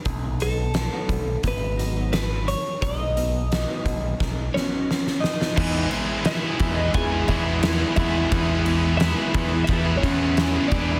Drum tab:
CC |----------------|----------------|x---------------|----------------|
RD |----------------|----------------|--x-x-x-x-x-x-x-|x-x-x-x-x-x-x-x-|
HH |x-x-x-x-x-x-x-x-|x-x-x-x---------|----------------|----------------|
SD |----o-------o---|----o---o-o-oooo|----o-------o---|----o-------o---|
BD |o-----o-o-------|o-----o-o-------|o-----o-o-o---o-|o-----o-o-o---o-|